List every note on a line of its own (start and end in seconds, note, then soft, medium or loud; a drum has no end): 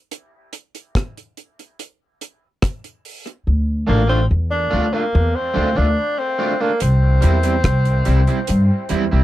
0.11 closed hi-hat medium
0.53 closed hi-hat medium
0.75 closed hi-hat soft
0.95 kick loud
0.95 cross-stick loud
0.95 closed hi-hat medium
1.17 closed hi-hat soft
1.37 closed hi-hat medium
1.59 closed hi-hat soft
1.79 closed hi-hat medium
2.21 closed hi-hat medium
2.62 kick loud
2.62 cross-stick loud
2.62 closed hi-hat medium
2.84 closed hi-hat medium
3.05 open hi-hat medium
3.27 closed hi-hat soft
3.47 3.83 D2 medium
3.87 4.25 A1 medium
3.87 4.01 A3 medium
3.87 4.08 A#3 medium
3.87 4.01 D4 loud
3.87 4.02 F4 medium
4.08 4.19 A3 soft
4.08 4.25 C4 loud
4.08 4.19 D4 medium
4.08 4.19 F4 medium
4.31 4.67 E2 medium
4.51 4.95 D4 loud
4.70 4.91 D2 medium
4.70 4.85 A3 medium
4.70 4.85 D4 medium
4.70 4.85 F4 loud
4.93 5.04 A3 soft
4.93 5.37 A#3 medium
4.93 5.03 D4 medium
4.93 5.03 F4 medium
5.15 5.33 E2 loud
5.35 5.79 C4 loud
5.54 5.75 D2 medium
5.54 5.68 A3 loud
5.54 5.69 D4 loud
5.54 5.69 F4 medium
5.76 5.95 D2 loud
5.76 5.87 A3 medium
5.76 5.87 D4 medium
5.76 6.20 D4 loud
5.76 5.86 F4 medium
6.19 6.63 C4 loud
6.38 6.53 A3 medium
6.38 6.53 D4 medium
6.38 6.53 F4 medium
6.60 6.71 A3 soft
6.60 6.81 A#3 medium
6.60 6.71 D4 medium
6.60 6.70 F4 medium
6.80 7.18 C2 medium
6.80 9.24 C4 loud
6.80 closed hi-hat loud
7.21 7.60 E2 loud
7.21 7.36 G3 medium
7.21 7.36 C4 medium
7.21 7.37 E4 medium
7.21 closed hi-hat medium
7.43 7.54 G3 medium
7.43 7.54 C4 medium
7.43 7.54 E4 medium
7.43 closed hi-hat medium
7.64 8.01 C2 medium
7.64 kick loud
7.64 cross-stick loud
7.64 closed hi-hat loud
7.85 closed hi-hat soft
8.05 8.26 C2 medium
8.05 8.20 G3 medium
8.05 8.20 C4 medium
8.05 8.20 E4 loud
8.05 closed hi-hat medium
8.27 8.38 G3 medium
8.27 8.38 C4 medium
8.27 8.38 E4 medium
8.27 closed hi-hat soft
8.47 8.67 G2 loud
8.47 closed hi-hat medium
8.89 9.09 E2 medium
8.89 9.03 G3 loud
8.89 9.04 C4 medium
8.89 9.04 E4 loud
8.89 closed hi-hat medium
9.11 9.24 C2 medium
9.11 9.22 G3 medium
9.11 9.22 C4 medium
9.11 9.21 E4 medium